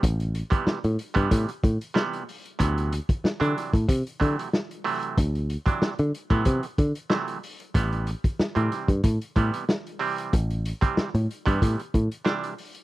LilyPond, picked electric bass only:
\new Staff \with { instrumentName = "Picked electric bass" } { \clef bass \time 4/4 \key a \dorian \tempo 4 = 93 a,,8. r8 a,16 r16 g,16 a,16 r16 a,16 r4 r16 | d,8. r8 d16 r16 a,16 c16 r16 d16 r4 r16 | d,8. r8 d16 r16 a,16 c16 r16 d16 r4 r16 | a,,8. r8 a,16 r16 g,16 a,16 r16 a,16 r4 r16 |
a,,8. r8 a,16 r16 g,16 a,16 r16 a,16 r4 r16 | }